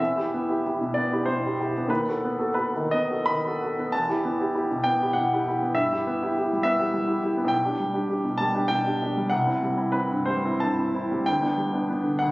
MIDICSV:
0, 0, Header, 1, 2, 480
1, 0, Start_track
1, 0, Key_signature, 1, "minor"
1, 0, Tempo, 633580
1, 1434, Time_signature, 6, 3, 24, 8
1, 1435, Tempo, 660066
1, 1915, Tempo, 714286
1, 2395, Tempo, 645161
1, 2875, Tempo, 612870
1, 4315, Tempo, 595829
1, 5746, Key_signature, 1, "major"
1, 7195, Tempo, 641026
1, 9432, End_track
2, 0, Start_track
2, 0, Title_t, "Grand piano"
2, 0, Program_c, 0, 0
2, 0, Control_c, 0, 64, 127
2, 0, Note_on_c, 0, 76, 52
2, 9, Control_c, 0, 64, 0
2, 14, Note_on_c, 0, 40, 36
2, 121, Note_off_c, 0, 40, 0
2, 128, Note_on_c, 0, 64, 28
2, 130, Control_c, 0, 64, 127
2, 132, Note_on_c, 0, 67, 30
2, 229, Note_off_c, 0, 64, 0
2, 231, Note_off_c, 0, 67, 0
2, 257, Note_on_c, 0, 59, 30
2, 369, Note_on_c, 0, 64, 29
2, 375, Note_on_c, 0, 67, 30
2, 434, Note_off_c, 0, 59, 0
2, 467, Note_off_c, 0, 64, 0
2, 471, Note_off_c, 0, 67, 0
2, 502, Note_on_c, 0, 67, 30
2, 503, Note_on_c, 0, 64, 29
2, 595, Note_off_c, 0, 64, 0
2, 595, Note_off_c, 0, 67, 0
2, 612, Note_on_c, 0, 47, 30
2, 712, Note_off_c, 0, 76, 0
2, 713, Note_on_c, 0, 74, 64
2, 734, Note_on_c, 0, 59, 34
2, 795, Note_off_c, 0, 47, 0
2, 855, Note_on_c, 0, 64, 29
2, 857, Note_on_c, 0, 67, 31
2, 917, Note_off_c, 0, 59, 0
2, 951, Note_on_c, 0, 72, 58
2, 954, Note_off_c, 0, 64, 0
2, 955, Note_off_c, 0, 74, 0
2, 956, Note_off_c, 0, 67, 0
2, 966, Note_on_c, 0, 47, 34
2, 1099, Note_on_c, 0, 64, 30
2, 1106, Note_on_c, 0, 67, 32
2, 1153, Note_off_c, 0, 47, 0
2, 1196, Note_off_c, 0, 64, 0
2, 1200, Note_off_c, 0, 67, 0
2, 1216, Note_on_c, 0, 67, 34
2, 1218, Note_on_c, 0, 64, 28
2, 1314, Note_off_c, 0, 67, 0
2, 1315, Note_off_c, 0, 64, 0
2, 1343, Note_on_c, 0, 59, 30
2, 1424, Note_on_c, 0, 39, 39
2, 1433, Note_off_c, 0, 72, 0
2, 1438, Note_on_c, 0, 71, 55
2, 1448, Note_off_c, 0, 59, 0
2, 1449, Control_c, 0, 64, 0
2, 1542, Note_off_c, 0, 39, 0
2, 1562, Control_c, 0, 64, 127
2, 1572, Note_on_c, 0, 66, 27
2, 1574, Note_on_c, 0, 69, 30
2, 1668, Note_off_c, 0, 66, 0
2, 1669, Note_off_c, 0, 69, 0
2, 1689, Note_on_c, 0, 59, 32
2, 1794, Note_on_c, 0, 69, 33
2, 1796, Note_on_c, 0, 66, 31
2, 1874, Note_off_c, 0, 59, 0
2, 1895, Note_off_c, 0, 71, 0
2, 1904, Note_off_c, 0, 69, 0
2, 1906, Note_off_c, 0, 66, 0
2, 1906, Note_on_c, 0, 71, 53
2, 1923, Note_on_c, 0, 66, 29
2, 1927, Note_on_c, 0, 69, 30
2, 2027, Note_off_c, 0, 66, 0
2, 2029, Note_off_c, 0, 69, 0
2, 2054, Note_on_c, 0, 51, 29
2, 2153, Note_off_c, 0, 71, 0
2, 2156, Note_on_c, 0, 75, 67
2, 2174, Note_on_c, 0, 59, 37
2, 2240, Note_off_c, 0, 51, 0
2, 2286, Note_on_c, 0, 66, 29
2, 2287, Note_on_c, 0, 69, 29
2, 2357, Note_off_c, 0, 59, 0
2, 2387, Note_off_c, 0, 66, 0
2, 2387, Note_off_c, 0, 69, 0
2, 2387, Note_on_c, 0, 83, 69
2, 2394, Note_off_c, 0, 75, 0
2, 2413, Note_on_c, 0, 51, 32
2, 2541, Note_on_c, 0, 66, 30
2, 2545, Note_on_c, 0, 69, 33
2, 2601, Note_off_c, 0, 51, 0
2, 2639, Note_off_c, 0, 66, 0
2, 2641, Note_off_c, 0, 69, 0
2, 2657, Note_on_c, 0, 66, 30
2, 2658, Note_on_c, 0, 69, 30
2, 2755, Note_off_c, 0, 66, 0
2, 2756, Note_off_c, 0, 69, 0
2, 2781, Note_on_c, 0, 59, 31
2, 2870, Note_off_c, 0, 83, 0
2, 2883, Note_on_c, 0, 81, 67
2, 2887, Note_off_c, 0, 59, 0
2, 2890, Control_c, 0, 64, 0
2, 2898, Note_on_c, 0, 40, 41
2, 3005, Note_off_c, 0, 40, 0
2, 3005, Control_c, 0, 64, 127
2, 3016, Note_on_c, 0, 64, 32
2, 3019, Note_on_c, 0, 67, 34
2, 3115, Note_off_c, 0, 64, 0
2, 3117, Note_off_c, 0, 67, 0
2, 3138, Note_on_c, 0, 59, 34
2, 3261, Note_on_c, 0, 64, 34
2, 3263, Note_on_c, 0, 67, 34
2, 3319, Note_off_c, 0, 59, 0
2, 3358, Note_off_c, 0, 64, 0
2, 3359, Note_off_c, 0, 67, 0
2, 3370, Note_on_c, 0, 64, 29
2, 3377, Note_on_c, 0, 67, 35
2, 3472, Note_off_c, 0, 64, 0
2, 3476, Note_off_c, 0, 67, 0
2, 3499, Note_on_c, 0, 47, 34
2, 3598, Note_on_c, 0, 79, 73
2, 3602, Note_off_c, 0, 81, 0
2, 3612, Note_on_c, 0, 59, 37
2, 3682, Note_off_c, 0, 47, 0
2, 3744, Note_on_c, 0, 64, 30
2, 3745, Note_on_c, 0, 67, 35
2, 3800, Note_off_c, 0, 59, 0
2, 3830, Note_on_c, 0, 78, 66
2, 3842, Note_off_c, 0, 79, 0
2, 3843, Note_off_c, 0, 64, 0
2, 3843, Note_off_c, 0, 67, 0
2, 3852, Note_on_c, 0, 47, 36
2, 3986, Note_on_c, 0, 64, 32
2, 3986, Note_on_c, 0, 67, 34
2, 4040, Note_off_c, 0, 47, 0
2, 4083, Note_off_c, 0, 64, 0
2, 4083, Note_off_c, 0, 67, 0
2, 4101, Note_on_c, 0, 64, 31
2, 4106, Note_on_c, 0, 67, 35
2, 4198, Note_off_c, 0, 64, 0
2, 4200, Note_off_c, 0, 67, 0
2, 4214, Note_on_c, 0, 59, 34
2, 4307, Note_on_c, 0, 43, 39
2, 4308, Note_off_c, 0, 78, 0
2, 4310, Note_on_c, 0, 76, 68
2, 4321, Note_off_c, 0, 59, 0
2, 4328, Control_c, 0, 64, 0
2, 4424, Note_off_c, 0, 43, 0
2, 4455, Control_c, 0, 64, 127
2, 4455, Note_on_c, 0, 64, 34
2, 4456, Note_on_c, 0, 67, 36
2, 4550, Note_off_c, 0, 64, 0
2, 4550, Note_off_c, 0, 67, 0
2, 4571, Note_on_c, 0, 59, 37
2, 4696, Note_on_c, 0, 64, 33
2, 4701, Note_on_c, 0, 67, 37
2, 4749, Note_off_c, 0, 59, 0
2, 4790, Note_off_c, 0, 64, 0
2, 4793, Note_off_c, 0, 67, 0
2, 4817, Note_on_c, 0, 64, 33
2, 4821, Note_on_c, 0, 67, 35
2, 4911, Note_off_c, 0, 64, 0
2, 4914, Note_off_c, 0, 67, 0
2, 4940, Note_on_c, 0, 55, 31
2, 5013, Note_off_c, 0, 76, 0
2, 5025, Note_on_c, 0, 76, 73
2, 5038, Note_on_c, 0, 59, 40
2, 5115, Note_off_c, 0, 55, 0
2, 5149, Note_on_c, 0, 64, 32
2, 5158, Note_on_c, 0, 67, 35
2, 5223, Note_off_c, 0, 59, 0
2, 5255, Note_off_c, 0, 64, 0
2, 5259, Note_off_c, 0, 67, 0
2, 5267, Note_on_c, 0, 55, 37
2, 5381, Note_on_c, 0, 64, 32
2, 5387, Note_on_c, 0, 67, 34
2, 5457, Note_off_c, 0, 55, 0
2, 5491, Note_off_c, 0, 64, 0
2, 5494, Note_off_c, 0, 67, 0
2, 5505, Note_on_c, 0, 64, 36
2, 5510, Note_on_c, 0, 67, 37
2, 5613, Note_off_c, 0, 64, 0
2, 5616, Note_off_c, 0, 67, 0
2, 5620, Note_on_c, 0, 59, 36
2, 5677, Note_on_c, 0, 35, 47
2, 5708, Note_on_c, 0, 79, 70
2, 5743, Note_off_c, 0, 59, 0
2, 5744, Note_off_c, 0, 76, 0
2, 5759, Control_c, 0, 64, 0
2, 5827, Note_off_c, 0, 35, 0
2, 5842, Note_on_c, 0, 62, 34
2, 5844, Note_on_c, 0, 67, 38
2, 5901, Control_c, 0, 64, 127
2, 5961, Note_on_c, 0, 55, 38
2, 5962, Note_off_c, 0, 62, 0
2, 5963, Note_off_c, 0, 67, 0
2, 6073, Note_on_c, 0, 62, 35
2, 6081, Note_on_c, 0, 67, 37
2, 6168, Note_off_c, 0, 55, 0
2, 6188, Note_off_c, 0, 62, 0
2, 6193, Note_off_c, 0, 67, 0
2, 6200, Note_on_c, 0, 62, 33
2, 6205, Note_on_c, 0, 67, 35
2, 6322, Note_off_c, 0, 62, 0
2, 6324, Note_off_c, 0, 67, 0
2, 6324, Note_on_c, 0, 47, 32
2, 6428, Note_on_c, 0, 81, 79
2, 6447, Note_on_c, 0, 55, 38
2, 6451, Note_off_c, 0, 79, 0
2, 6529, Note_off_c, 0, 47, 0
2, 6567, Note_on_c, 0, 62, 34
2, 6568, Note_on_c, 0, 67, 37
2, 6651, Note_off_c, 0, 55, 0
2, 6674, Note_on_c, 0, 79, 77
2, 6686, Note_off_c, 0, 62, 0
2, 6687, Note_off_c, 0, 67, 0
2, 6690, Note_off_c, 0, 81, 0
2, 6695, Note_on_c, 0, 47, 36
2, 6806, Note_on_c, 0, 62, 35
2, 6821, Note_on_c, 0, 67, 38
2, 6896, Note_off_c, 0, 47, 0
2, 6927, Note_off_c, 0, 62, 0
2, 6935, Note_off_c, 0, 67, 0
2, 6949, Note_on_c, 0, 67, 35
2, 6953, Note_on_c, 0, 62, 34
2, 7059, Note_off_c, 0, 67, 0
2, 7061, Note_off_c, 0, 62, 0
2, 7069, Note_on_c, 0, 55, 36
2, 7170, Note_on_c, 0, 78, 70
2, 7175, Note_off_c, 0, 79, 0
2, 7185, Note_on_c, 0, 36, 45
2, 7192, Note_off_c, 0, 55, 0
2, 7205, Control_c, 0, 64, 0
2, 7298, Note_off_c, 0, 36, 0
2, 7300, Note_on_c, 0, 64, 38
2, 7301, Note_on_c, 0, 60, 33
2, 7320, Control_c, 0, 64, 127
2, 7404, Note_off_c, 0, 64, 0
2, 7405, Note_off_c, 0, 60, 0
2, 7418, Note_on_c, 0, 55, 36
2, 7528, Note_on_c, 0, 60, 35
2, 7531, Note_on_c, 0, 64, 37
2, 7607, Note_off_c, 0, 55, 0
2, 7636, Note_off_c, 0, 64, 0
2, 7638, Note_on_c, 0, 71, 62
2, 7640, Note_off_c, 0, 60, 0
2, 7645, Note_off_c, 0, 78, 0
2, 7647, Note_on_c, 0, 64, 34
2, 7651, Note_on_c, 0, 60, 32
2, 7766, Note_off_c, 0, 64, 0
2, 7768, Note_off_c, 0, 60, 0
2, 7779, Note_on_c, 0, 43, 33
2, 7890, Note_on_c, 0, 72, 62
2, 7905, Note_off_c, 0, 71, 0
2, 7907, Note_on_c, 0, 55, 39
2, 7991, Note_off_c, 0, 43, 0
2, 8037, Note_on_c, 0, 60, 34
2, 8037, Note_on_c, 0, 64, 36
2, 8117, Note_off_c, 0, 55, 0
2, 8150, Note_on_c, 0, 81, 67
2, 8154, Note_off_c, 0, 60, 0
2, 8154, Note_off_c, 0, 64, 0
2, 8158, Note_off_c, 0, 72, 0
2, 8167, Note_on_c, 0, 43, 35
2, 8286, Note_on_c, 0, 60, 32
2, 8291, Note_on_c, 0, 64, 35
2, 8362, Note_off_c, 0, 43, 0
2, 8395, Note_off_c, 0, 60, 0
2, 8398, Note_off_c, 0, 64, 0
2, 8407, Note_on_c, 0, 60, 33
2, 8412, Note_on_c, 0, 64, 38
2, 8513, Note_off_c, 0, 60, 0
2, 8516, Note_off_c, 0, 64, 0
2, 8530, Note_on_c, 0, 55, 35
2, 8631, Note_off_c, 0, 81, 0
2, 8643, Note_on_c, 0, 79, 70
2, 8644, Note_off_c, 0, 55, 0
2, 8653, Control_c, 0, 64, 0
2, 8657, Note_on_c, 0, 38, 43
2, 8761, Note_on_c, 0, 59, 30
2, 8762, Note_off_c, 0, 38, 0
2, 8765, Note_on_c, 0, 62, 35
2, 8772, Control_c, 0, 64, 127
2, 8864, Note_off_c, 0, 59, 0
2, 8867, Note_off_c, 0, 62, 0
2, 8875, Note_on_c, 0, 55, 33
2, 8995, Note_on_c, 0, 59, 32
2, 9001, Note_on_c, 0, 62, 35
2, 9063, Note_off_c, 0, 55, 0
2, 9101, Note_off_c, 0, 59, 0
2, 9104, Note_off_c, 0, 62, 0
2, 9114, Note_on_c, 0, 59, 31
2, 9119, Note_on_c, 0, 62, 31
2, 9221, Note_off_c, 0, 59, 0
2, 9222, Note_on_c, 0, 50, 30
2, 9223, Note_off_c, 0, 62, 0
2, 9337, Note_on_c, 0, 78, 72
2, 9347, Note_off_c, 0, 50, 0
2, 9352, Note_off_c, 0, 79, 0
2, 9361, Note_on_c, 0, 38, 45
2, 9367, Control_c, 0, 64, 0
2, 9432, Note_off_c, 0, 38, 0
2, 9432, Note_off_c, 0, 78, 0
2, 9432, End_track
0, 0, End_of_file